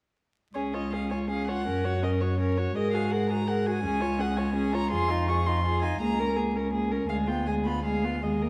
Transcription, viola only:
0, 0, Header, 1, 2, 480
1, 0, Start_track
1, 0, Tempo, 371287
1, 715, Time_signature, 6, 3, 24, 8
1, 2631, Tempo, 361664
1, 9351, Tempo, 379027
1, 11118, End_track
2, 0, Start_track
2, 0, Title_t, "Viola"
2, 0, Program_c, 0, 41
2, 716, Note_on_c, 0, 61, 37
2, 955, Note_on_c, 0, 65, 34
2, 975, Note_off_c, 0, 61, 0
2, 1202, Note_on_c, 0, 61, 33
2, 1221, Note_off_c, 0, 65, 0
2, 1447, Note_on_c, 0, 65, 36
2, 1467, Note_off_c, 0, 61, 0
2, 1673, Note_off_c, 0, 65, 0
2, 1681, Note_on_c, 0, 61, 34
2, 1918, Note_on_c, 0, 65, 36
2, 1937, Note_off_c, 0, 61, 0
2, 2148, Note_off_c, 0, 65, 0
2, 2156, Note_on_c, 0, 61, 39
2, 2389, Note_on_c, 0, 66, 37
2, 2408, Note_off_c, 0, 61, 0
2, 2618, Note_on_c, 0, 61, 37
2, 2638, Note_off_c, 0, 66, 0
2, 2864, Note_on_c, 0, 66, 38
2, 2883, Note_off_c, 0, 61, 0
2, 3101, Note_off_c, 0, 66, 0
2, 3109, Note_on_c, 0, 61, 39
2, 3352, Note_on_c, 0, 66, 41
2, 3372, Note_off_c, 0, 61, 0
2, 3579, Note_off_c, 0, 66, 0
2, 3587, Note_on_c, 0, 68, 39
2, 3821, Note_on_c, 0, 66, 39
2, 3840, Note_off_c, 0, 68, 0
2, 4067, Note_on_c, 0, 68, 39
2, 4087, Note_off_c, 0, 66, 0
2, 4315, Note_on_c, 0, 66, 43
2, 4335, Note_off_c, 0, 68, 0
2, 4538, Note_off_c, 0, 66, 0
2, 4546, Note_on_c, 0, 68, 41
2, 4784, Note_on_c, 0, 66, 44
2, 4804, Note_off_c, 0, 68, 0
2, 5012, Note_off_c, 0, 66, 0
2, 5020, Note_on_c, 0, 61, 46
2, 5245, Note_on_c, 0, 65, 42
2, 5265, Note_off_c, 0, 61, 0
2, 5491, Note_on_c, 0, 61, 42
2, 5511, Note_off_c, 0, 65, 0
2, 5739, Note_on_c, 0, 65, 45
2, 5759, Note_off_c, 0, 61, 0
2, 5968, Note_off_c, 0, 65, 0
2, 5976, Note_on_c, 0, 61, 44
2, 6210, Note_on_c, 0, 65, 47
2, 6230, Note_off_c, 0, 61, 0
2, 6453, Note_off_c, 0, 65, 0
2, 6461, Note_on_c, 0, 65, 50
2, 6699, Note_on_c, 0, 63, 45
2, 6719, Note_off_c, 0, 65, 0
2, 6941, Note_on_c, 0, 65, 44
2, 6961, Note_off_c, 0, 63, 0
2, 7181, Note_on_c, 0, 63, 48
2, 7201, Note_off_c, 0, 65, 0
2, 7411, Note_off_c, 0, 63, 0
2, 7419, Note_on_c, 0, 65, 44
2, 7655, Note_on_c, 0, 63, 45
2, 7675, Note_off_c, 0, 65, 0
2, 7898, Note_off_c, 0, 63, 0
2, 7906, Note_on_c, 0, 58, 45
2, 8157, Note_on_c, 0, 61, 42
2, 8177, Note_off_c, 0, 58, 0
2, 8388, Note_on_c, 0, 58, 39
2, 8408, Note_off_c, 0, 61, 0
2, 8627, Note_on_c, 0, 61, 42
2, 8647, Note_off_c, 0, 58, 0
2, 8858, Note_off_c, 0, 61, 0
2, 8866, Note_on_c, 0, 58, 37
2, 9118, Note_on_c, 0, 61, 41
2, 9138, Note_off_c, 0, 58, 0
2, 9338, Note_off_c, 0, 61, 0
2, 9346, Note_on_c, 0, 56, 42
2, 9589, Note_on_c, 0, 59, 39
2, 9608, Note_off_c, 0, 56, 0
2, 9822, Note_on_c, 0, 56, 34
2, 9841, Note_off_c, 0, 59, 0
2, 10055, Note_on_c, 0, 59, 38
2, 10074, Note_off_c, 0, 56, 0
2, 10291, Note_off_c, 0, 59, 0
2, 10299, Note_on_c, 0, 56, 32
2, 10533, Note_on_c, 0, 59, 35
2, 10552, Note_off_c, 0, 56, 0
2, 10782, Note_off_c, 0, 59, 0
2, 10789, Note_on_c, 0, 56, 33
2, 11037, Note_on_c, 0, 58, 30
2, 11056, Note_off_c, 0, 56, 0
2, 11118, Note_off_c, 0, 58, 0
2, 11118, End_track
0, 0, End_of_file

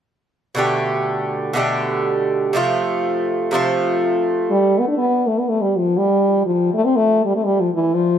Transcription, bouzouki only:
0, 0, Header, 1, 2, 480
1, 0, Start_track
1, 0, Tempo, 491803
1, 550, Time_signature, 2, 2, 24, 8
1, 7989, End_track
2, 0, Start_track
2, 0, Title_t, "Bouzouki"
2, 0, Program_c, 0, 25
2, 533, Note_on_c, 0, 47, 68
2, 549, Note_on_c, 0, 50, 63
2, 561, Note_on_c, 0, 57, 69
2, 569, Note_on_c, 0, 67, 72
2, 1486, Note_off_c, 0, 47, 0
2, 1497, Note_on_c, 0, 47, 75
2, 1499, Note_off_c, 0, 50, 0
2, 1511, Note_on_c, 0, 50, 65
2, 1515, Note_off_c, 0, 57, 0
2, 1519, Note_off_c, 0, 67, 0
2, 1519, Note_on_c, 0, 57, 70
2, 1530, Note_on_c, 0, 67, 73
2, 2466, Note_off_c, 0, 47, 0
2, 2470, Note_on_c, 0, 48, 65
2, 2474, Note_off_c, 0, 50, 0
2, 2484, Note_off_c, 0, 67, 0
2, 2484, Note_on_c, 0, 53, 65
2, 2491, Note_off_c, 0, 57, 0
2, 2494, Note_on_c, 0, 57, 82
2, 2504, Note_on_c, 0, 65, 85
2, 3415, Note_off_c, 0, 48, 0
2, 3426, Note_on_c, 0, 48, 66
2, 3428, Note_off_c, 0, 53, 0
2, 3440, Note_on_c, 0, 53, 62
2, 3450, Note_off_c, 0, 57, 0
2, 3451, Note_off_c, 0, 65, 0
2, 3454, Note_on_c, 0, 57, 81
2, 3463, Note_on_c, 0, 65, 80
2, 4392, Note_off_c, 0, 48, 0
2, 4398, Note_off_c, 0, 53, 0
2, 4410, Note_off_c, 0, 65, 0
2, 4898, Note_off_c, 0, 57, 0
2, 7989, End_track
0, 0, End_of_file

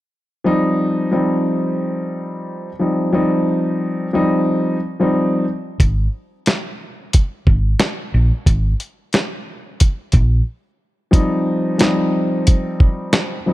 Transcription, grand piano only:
0, 0, Header, 1, 2, 480
1, 0, Start_track
1, 0, Key_signature, -3, "major"
1, 0, Tempo, 666667
1, 336, Time_signature, 4, 2, 24, 8
1, 9743, End_track
2, 0, Start_track
2, 0, Title_t, "Grand piano"
2, 0, Program_c, 0, 0
2, 320, Note_on_c, 0, 53, 92
2, 325, Note_on_c, 0, 55, 77
2, 329, Note_on_c, 0, 60, 78
2, 334, Note_on_c, 0, 63, 111
2, 778, Note_off_c, 0, 53, 0
2, 780, Note_off_c, 0, 55, 0
2, 782, Note_off_c, 0, 60, 0
2, 785, Note_off_c, 0, 63, 0
2, 802, Note_on_c, 0, 53, 86
2, 806, Note_on_c, 0, 55, 74
2, 811, Note_on_c, 0, 60, 83
2, 816, Note_on_c, 0, 63, 94
2, 1933, Note_off_c, 0, 53, 0
2, 1935, Note_off_c, 0, 55, 0
2, 1938, Note_off_c, 0, 60, 0
2, 1940, Note_off_c, 0, 63, 0
2, 2012, Note_on_c, 0, 53, 74
2, 2017, Note_on_c, 0, 55, 61
2, 2022, Note_on_c, 0, 60, 66
2, 2025, Note_on_c, 0, 63, 81
2, 2239, Note_off_c, 0, 53, 0
2, 2242, Note_off_c, 0, 55, 0
2, 2244, Note_off_c, 0, 60, 0
2, 2246, Note_off_c, 0, 63, 0
2, 2251, Note_on_c, 0, 53, 91
2, 2255, Note_on_c, 0, 55, 82
2, 2260, Note_on_c, 0, 60, 86
2, 2264, Note_on_c, 0, 63, 101
2, 2928, Note_off_c, 0, 53, 0
2, 2930, Note_off_c, 0, 55, 0
2, 2932, Note_off_c, 0, 60, 0
2, 2935, Note_off_c, 0, 63, 0
2, 2975, Note_on_c, 0, 53, 91
2, 2978, Note_on_c, 0, 55, 80
2, 2983, Note_on_c, 0, 60, 83
2, 2988, Note_on_c, 0, 63, 102
2, 3425, Note_off_c, 0, 53, 0
2, 3427, Note_off_c, 0, 55, 0
2, 3429, Note_off_c, 0, 60, 0
2, 3432, Note_off_c, 0, 63, 0
2, 3597, Note_on_c, 0, 53, 86
2, 3603, Note_on_c, 0, 55, 80
2, 3606, Note_on_c, 0, 60, 86
2, 3611, Note_on_c, 0, 63, 100
2, 3911, Note_off_c, 0, 53, 0
2, 3914, Note_off_c, 0, 55, 0
2, 3916, Note_off_c, 0, 60, 0
2, 3918, Note_off_c, 0, 63, 0
2, 7998, Note_on_c, 0, 53, 93
2, 8003, Note_on_c, 0, 55, 79
2, 8008, Note_on_c, 0, 60, 82
2, 8012, Note_on_c, 0, 63, 107
2, 8457, Note_off_c, 0, 53, 0
2, 8459, Note_off_c, 0, 55, 0
2, 8462, Note_off_c, 0, 60, 0
2, 8464, Note_off_c, 0, 63, 0
2, 8482, Note_on_c, 0, 53, 90
2, 8486, Note_on_c, 0, 55, 76
2, 8492, Note_on_c, 0, 60, 83
2, 8495, Note_on_c, 0, 63, 97
2, 9614, Note_off_c, 0, 53, 0
2, 9615, Note_off_c, 0, 55, 0
2, 9618, Note_off_c, 0, 60, 0
2, 9620, Note_off_c, 0, 63, 0
2, 9692, Note_on_c, 0, 53, 74
2, 9698, Note_on_c, 0, 55, 66
2, 9702, Note_on_c, 0, 60, 67
2, 9706, Note_on_c, 0, 63, 81
2, 9743, Note_off_c, 0, 53, 0
2, 9743, Note_off_c, 0, 55, 0
2, 9743, Note_off_c, 0, 60, 0
2, 9743, Note_off_c, 0, 63, 0
2, 9743, End_track
0, 0, End_of_file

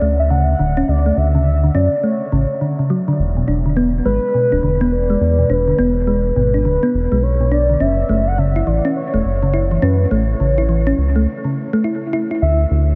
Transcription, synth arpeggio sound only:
0, 0, Header, 1, 2, 480
1, 0, Start_track
1, 0, Tempo, 576923
1, 734, Time_signature, 4, 2, 24, 8
1, 10775, End_track
2, 0, Start_track
2, 0, Title_t, "Synth arpeggio sound"
2, 0, Program_c, 0, 84
2, 13, Note_on_c, 0, 57, 77
2, 107, Note_off_c, 0, 57, 0
2, 253, Note_on_c, 0, 49, 87
2, 394, Note_off_c, 0, 49, 0
2, 493, Note_on_c, 0, 50, 75
2, 588, Note_off_c, 0, 50, 0
2, 642, Note_on_c, 0, 61, 99
2, 700, Note_off_c, 0, 61, 0
2, 882, Note_on_c, 0, 57, 73
2, 940, Note_off_c, 0, 57, 0
2, 1122, Note_on_c, 0, 49, 79
2, 1209, Note_off_c, 0, 49, 0
2, 1362, Note_on_c, 0, 50, 82
2, 1420, Note_off_c, 0, 50, 0
2, 1453, Note_on_c, 0, 61, 100
2, 1547, Note_off_c, 0, 61, 0
2, 1693, Note_on_c, 0, 57, 80
2, 1787, Note_off_c, 0, 57, 0
2, 1934, Note_on_c, 0, 49, 103
2, 1990, Note_off_c, 0, 49, 0
2, 2174, Note_on_c, 0, 50, 84
2, 2268, Note_off_c, 0, 50, 0
2, 2322, Note_on_c, 0, 49, 76
2, 2409, Note_off_c, 0, 49, 0
2, 2414, Note_on_c, 0, 54, 99
2, 2508, Note_off_c, 0, 54, 0
2, 2563, Note_on_c, 0, 50, 100
2, 2649, Note_off_c, 0, 50, 0
2, 2803, Note_on_c, 0, 47, 75
2, 2889, Note_off_c, 0, 47, 0
2, 2894, Note_on_c, 0, 62, 75
2, 2950, Note_off_c, 0, 62, 0
2, 3043, Note_on_c, 0, 50, 78
2, 3100, Note_off_c, 0, 50, 0
2, 3134, Note_on_c, 0, 59, 98
2, 3228, Note_off_c, 0, 59, 0
2, 3373, Note_on_c, 0, 56, 76
2, 3467, Note_off_c, 0, 56, 0
2, 3614, Note_on_c, 0, 47, 84
2, 3755, Note_off_c, 0, 47, 0
2, 3762, Note_on_c, 0, 62, 76
2, 3797, Note_off_c, 0, 62, 0
2, 3853, Note_on_c, 0, 50, 77
2, 3947, Note_off_c, 0, 50, 0
2, 4003, Note_on_c, 0, 59, 107
2, 4060, Note_off_c, 0, 59, 0
2, 4242, Note_on_c, 0, 56, 73
2, 4300, Note_off_c, 0, 56, 0
2, 4482, Note_on_c, 0, 47, 75
2, 4569, Note_off_c, 0, 47, 0
2, 4574, Note_on_c, 0, 62, 79
2, 4630, Note_off_c, 0, 62, 0
2, 4723, Note_on_c, 0, 50, 73
2, 4780, Note_off_c, 0, 50, 0
2, 4814, Note_on_c, 0, 59, 103
2, 4908, Note_off_c, 0, 59, 0
2, 5053, Note_on_c, 0, 56, 80
2, 5147, Note_off_c, 0, 56, 0
2, 5293, Note_on_c, 0, 47, 76
2, 5434, Note_off_c, 0, 47, 0
2, 5442, Note_on_c, 0, 62, 74
2, 5477, Note_off_c, 0, 62, 0
2, 5534, Note_on_c, 0, 50, 83
2, 5628, Note_off_c, 0, 50, 0
2, 5682, Note_on_c, 0, 59, 96
2, 5740, Note_off_c, 0, 59, 0
2, 5922, Note_on_c, 0, 56, 79
2, 5980, Note_off_c, 0, 56, 0
2, 6162, Note_on_c, 0, 47, 77
2, 6249, Note_off_c, 0, 47, 0
2, 6253, Note_on_c, 0, 62, 78
2, 6310, Note_off_c, 0, 62, 0
2, 6402, Note_on_c, 0, 50, 75
2, 6460, Note_off_c, 0, 50, 0
2, 6493, Note_on_c, 0, 61, 92
2, 6587, Note_off_c, 0, 61, 0
2, 6733, Note_on_c, 0, 57, 76
2, 6827, Note_off_c, 0, 57, 0
2, 6973, Note_on_c, 0, 49, 80
2, 7115, Note_off_c, 0, 49, 0
2, 7122, Note_on_c, 0, 64, 81
2, 7157, Note_off_c, 0, 64, 0
2, 7213, Note_on_c, 0, 52, 78
2, 7307, Note_off_c, 0, 52, 0
2, 7362, Note_on_c, 0, 61, 96
2, 7420, Note_off_c, 0, 61, 0
2, 7603, Note_on_c, 0, 57, 76
2, 7660, Note_off_c, 0, 57, 0
2, 7842, Note_on_c, 0, 49, 80
2, 7929, Note_off_c, 0, 49, 0
2, 7934, Note_on_c, 0, 64, 87
2, 7990, Note_off_c, 0, 64, 0
2, 8082, Note_on_c, 0, 52, 80
2, 8140, Note_off_c, 0, 52, 0
2, 8173, Note_on_c, 0, 61, 102
2, 8267, Note_off_c, 0, 61, 0
2, 8413, Note_on_c, 0, 57, 83
2, 8508, Note_off_c, 0, 57, 0
2, 8654, Note_on_c, 0, 49, 73
2, 8795, Note_off_c, 0, 49, 0
2, 8803, Note_on_c, 0, 64, 79
2, 8837, Note_off_c, 0, 64, 0
2, 8893, Note_on_c, 0, 52, 84
2, 8988, Note_off_c, 0, 52, 0
2, 9042, Note_on_c, 0, 61, 106
2, 9100, Note_off_c, 0, 61, 0
2, 9282, Note_on_c, 0, 57, 75
2, 9340, Note_off_c, 0, 57, 0
2, 9522, Note_on_c, 0, 49, 77
2, 9609, Note_off_c, 0, 49, 0
2, 9763, Note_on_c, 0, 57, 105
2, 9849, Note_off_c, 0, 57, 0
2, 9854, Note_on_c, 0, 64, 84
2, 9948, Note_off_c, 0, 64, 0
2, 10094, Note_on_c, 0, 64, 99
2, 10188, Note_off_c, 0, 64, 0
2, 10243, Note_on_c, 0, 64, 75
2, 10300, Note_off_c, 0, 64, 0
2, 10775, End_track
0, 0, End_of_file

